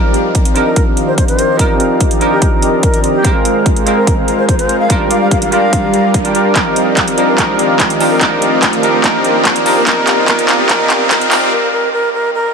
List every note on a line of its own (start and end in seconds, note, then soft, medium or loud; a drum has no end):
0.00 3.21 D#3 medium
0.00 0.52 F3 loud
0.00 0.53 C4 medium
0.00 4.86 C4 medium
0.00 0.54 D#4 medium
0.00 3.21 F4 medium
0.00 0.53 G4 medium
0.00 0.53 A#4 medium
0.00 0.54 A#4 loud
0.00 9.83 A#4 medium
0.00 0.53 D5 medium
0.00 0.53 D#5 medium
0.00 0.53 F5 medium
0.00 riser medium
0.14 closed hi-hat medium
0.35 kick medium
0.35 closed hi-hat medium
0.45 closed hi-hat medium
0.55 0.67 F3 loud
0.55 1.57 C4 medium
0.55 0.67 D4 medium
0.55 0.68 D#4 medium
0.55 1.57 G4 medium
0.55 1.57 A#4 medium
0.55 0.68 A#4 loud
0.55 1.57 D5 medium
0.55 1.57 D#5 medium
0.55 1.57 F5 medium
0.55 closed hi-hat medium
0.66 0.82 A#4 medium
0.76 kick medium
0.76 closed hi-hat medium
0.97 closed hi-hat medium
1.08 1.14 C5 medium
1.18 1.24 C5 medium
1.18 kick loud
1.18 closed hi-hat medium
1.28 1.57 C5 medium
1.28 closed hi-hat medium
1.39 closed hi-hat medium
1.57 2.18 F3 loud
1.57 2.19 C4 medium
1.57 2.19 D#4 medium
1.57 2.19 G4 medium
1.57 1.75 A#4 medium
1.57 2.19 A#4 medium
1.57 2.20 A#4 loud
1.57 2.19 D5 medium
1.57 2.19 D#5 medium
1.57 2.19 F5 medium
1.57 kick medium
1.57 closed hi-hat medium
1.80 closed hi-hat medium
2.01 kick medium
2.01 closed hi-hat medium
2.11 closed hi-hat medium
2.20 2.32 F3 medium
2.20 3.22 C4 medium
2.20 2.33 D4 medium
2.20 2.33 D#4 medium
2.20 3.22 G4 medium
2.20 3.22 A#4 medium
2.20 2.33 A#4 loud
2.20 3.22 D5 medium
2.20 3.22 D#5 medium
2.20 3.22 A#5 medium
2.20 closed hi-hat medium
2.32 2.48 G4 medium
2.42 kick loud
2.42 closed hi-hat medium
2.62 closed hi-hat medium
2.83 2.99 A#4 loud
2.83 kick loud
2.83 closed hi-hat medium
2.94 closed hi-hat medium
3.04 closed hi-hat medium
3.14 3.29 G4 medium
3.23 3.83 G#3 loud
3.23 3.84 G#3 medium
3.23 4.88 G#3 medium
3.23 3.84 C4 medium
3.23 11.48 F4 medium
3.23 3.85 F4 medium
3.23 3.84 G#4 medium
3.23 3.84 A#4 medium
3.23 3.84 C5 medium
3.23 3.84 F5 medium
3.23 kick loud
3.23 closed hi-hat medium
3.27 3.85 A#4 loud
3.45 closed hi-hat medium
3.66 kick loud
3.66 closed hi-hat medium
3.76 closed hi-hat medium
3.86 3.98 G#3 medium
3.86 4.87 G#3 medium
3.86 3.98 C4 medium
3.86 3.99 F4 medium
3.86 4.87 G#4 medium
3.86 4.87 A#4 medium
3.86 3.99 A#4 loud
3.86 4.87 C5 medium
3.86 4.87 F5 medium
3.86 closed hi-hat medium
3.97 4.13 A#4 medium
4.07 kick loud
4.07 closed hi-hat medium
4.28 closed hi-hat medium
4.38 4.45 C5 medium
4.48 4.55 C5 medium
4.48 kick loud
4.48 closed hi-hat medium
4.59 4.79 C5 medium
4.59 closed hi-hat medium
4.69 closed hi-hat medium
4.80 4.94 F5 medium
4.88 5.49 G3 medium
4.88 6.54 G3 medium
4.88 5.50 G3 medium
4.88 5.49 D4 medium
4.88 6.54 D4 medium
4.88 5.50 F4 medium
4.88 5.50 G4 medium
4.88 5.50 A#4 medium
4.88 5.51 A#4 loud
4.88 5.50 D5 medium
4.88 5.50 F5 medium
4.88 kick loud
4.88 closed hi-hat medium
5.11 5.17 F5 medium
5.11 closed hi-hat medium
5.21 5.28 F5 medium
5.31 5.38 F5 medium
5.31 kick loud
5.31 closed hi-hat medium
5.42 5.49 F5 medium
5.42 closed hi-hat medium
5.51 5.63 G3 loud
5.51 6.22 G3 medium
5.51 5.64 D4 medium
5.51 5.64 F4 medium
5.51 6.22 G4 medium
5.51 6.22 A#4 medium
5.51 5.64 A#4 loud
5.51 6.22 D5 medium
5.51 6.10 F5 medium
5.51 6.22 A#5 medium
5.51 closed hi-hat medium
5.73 kick medium
5.73 closed hi-hat medium
5.94 closed hi-hat medium
6.14 kick loud
6.14 closed hi-hat medium
6.24 6.33 G3 medium
6.24 6.32 G3 loud
6.24 6.33 D4 medium
6.24 6.34 F4 medium
6.24 6.32 G4 medium
6.24 6.32 A#4 medium
6.24 6.34 A#4 medium
6.24 6.32 D5 medium
6.24 6.32 G5 loud
6.24 closed hi-hat medium
6.34 6.53 G3 medium
6.34 6.53 D4 medium
6.34 6.53 F4 medium
6.34 6.53 G4 medium
6.34 6.53 A#4 medium
6.34 6.54 A#4 medium
6.34 6.53 D5 medium
6.34 6.53 F5 medium
6.34 closed hi-hat medium
6.54 9.83 D#3 medium
6.54 7.14 F3 medium
6.54 7.15 C4 medium
6.54 11.48 C4 medium
6.54 7.16 D#4 medium
6.54 7.15 G4 medium
6.54 7.15 A#4 medium
6.54 7.16 A#4 loud
6.54 7.15 D5 medium
6.54 7.15 D#5 medium
6.54 7.15 F5 medium
6.54 kick loud
6.54 clap soft
6.54 closed hi-hat medium
6.76 closed hi-hat medium
6.97 kick loud
6.97 clap medium
6.97 closed hi-hat medium
7.08 closed hi-hat medium
7.17 7.29 F3 medium
7.17 7.37 C4 medium
7.17 7.29 D4 medium
7.17 7.30 D#4 medium
7.17 7.37 G4 medium
7.17 7.37 A#4 medium
7.17 7.30 A#4 loud
7.17 7.37 D5 medium
7.17 7.37 D#5 medium
7.17 7.37 F5 medium
7.17 closed hi-hat medium
7.28 7.37 A#4 medium
7.36 7.97 F3 medium
7.36 7.98 C4 medium
7.36 7.98 D#4 medium
7.36 7.98 G4 medium
7.36 7.98 A#4 medium
7.36 7.98 D5 medium
7.36 7.98 D#5 medium
7.36 7.98 F5 loud
7.36 kick loud
7.36 clap medium
7.36 closed hi-hat medium
7.40 7.99 A#4 loud
7.59 closed hi-hat medium
7.80 kick loud
7.80 clap medium
7.80 closed hi-hat medium
7.90 closed hi-hat medium
8.00 8.12 F3 medium
8.00 8.19 C4 medium
8.00 8.12 D4 medium
8.00 8.12 D#4 medium
8.00 8.19 G4 medium
8.00 8.19 A#4 medium
8.00 8.13 A#4 loud
8.00 8.19 D5 medium
8.00 8.19 D#5 medium
8.00 8.19 F5 medium
8.00 open hi-hat medium
8.11 8.19 A#4 medium
8.19 8.80 F3 loud
8.19 8.81 C4 medium
8.19 8.81 D#4 medium
8.19 8.81 G4 medium
8.19 8.81 A#4 medium
8.19 8.82 A#4 loud
8.19 8.81 D5 medium
8.19 8.81 D#5 medium
8.19 8.81 F5 loud
8.19 kick loud
8.19 clap medium
8.19 closed hi-hat medium
8.42 closed hi-hat medium
8.62 kick loud
8.62 clap medium
8.62 closed hi-hat medium
8.73 closed hi-hat medium
8.82 8.95 F3 medium
8.82 9.02 C4 medium
8.82 8.95 D4 medium
8.82 8.95 D#4 medium
8.82 9.02 G4 medium
8.82 9.02 A#4 medium
8.82 8.96 A#4 loud
8.82 9.02 D5 medium
8.82 9.02 D#5 medium
8.82 9.02 F5 medium
8.82 closed hi-hat medium
8.94 9.02 A#4 medium
9.02 9.63 F3 medium
9.02 9.63 C4 medium
9.02 9.64 D#4 medium
9.02 9.63 G4 medium
9.02 9.63 A#4 medium
9.02 9.63 D5 medium
9.02 9.63 D#5 medium
9.02 9.63 F5 medium
9.02 kick loud
9.02 clap medium
9.02 closed hi-hat medium
9.06 9.65 A#4 loud
9.24 closed hi-hat medium
9.45 kick loud
9.45 clap medium
9.45 closed hi-hat medium
9.56 closed hi-hat medium
9.65 9.77 F3 medium
9.65 9.85 C4 medium
9.65 9.78 D4 medium
9.65 9.78 D#4 medium
9.65 9.85 G4 medium
9.65 9.85 A#4 medium
9.65 9.78 A#4 loud
9.65 9.85 D5 medium
9.65 9.85 D#5 medium
9.65 9.85 F5 medium
9.65 open hi-hat medium
9.76 9.85 A#4 medium
9.85 10.25 F3 loud
9.85 11.50 G#3 medium
9.85 10.26 C4 medium
9.85 10.27 D#4 medium
9.85 10.26 G4 medium
9.85 10.26 A#4 medium
9.85 11.50 A#4 medium
9.85 10.03 A#4 medium
9.85 10.27 A#4 loud
9.85 10.26 D5 medium
9.85 10.26 D#5 medium
9.85 10.26 F5 loud
9.85 kick loud
9.85 clap medium
9.85 closed hi-hat medium
10.07 clap medium
10.07 closed hi-hat medium
10.26 10.66 F3 medium
10.26 10.68 C4 medium
10.26 10.68 D#4 medium
10.26 10.68 G4 medium
10.26 10.68 A#4 medium
10.26 10.44 A#4 loud
10.26 10.69 A#4 loud
10.26 10.68 D5 medium
10.26 10.68 D#5 medium
10.26 10.68 F5 loud
10.26 kick loud
10.26 clap medium
10.26 closed hi-hat medium
10.39 closed hi-hat medium
10.49 clap medium
10.49 closed hi-hat medium
10.68 11.08 F3 loud
10.68 11.09 C4 loud
10.68 11.10 D#4 medium
10.68 11.09 G4 medium
10.68 10.85 A#4 medium
10.68 11.09 A#4 medium
10.68 11.10 A#4 loud
10.68 11.09 D5 medium
10.68 11.09 D#5 medium
10.68 11.09 F5 loud
10.68 kick loud
10.68 clap medium
10.68 closed hi-hat medium
10.90 clap medium
10.90 closed hi-hat medium
11.09 11.50 F3 loud
11.09 11.51 C4 medium
11.09 11.51 D#4 loud
11.09 11.51 G4 medium
11.09 11.50 A#4 medium
11.09 11.27 A#4 loud
11.09 11.51 D5 medium
11.09 11.51 D#5 medium
11.09 11.51 F5 medium
11.09 kick loud
11.09 clap loud
11.09 closed hi-hat medium
11.13 11.52 A#4 loud
11.21 closed hi-hat medium
11.31 clap medium
11.31 open hi-hat loud
11.52 11.68 A#4 medium
11.72 11.89 A#4 loud
11.93 12.09 A#4 loud
12.14 12.30 A#4 medium
12.35 12.51 A#4 loud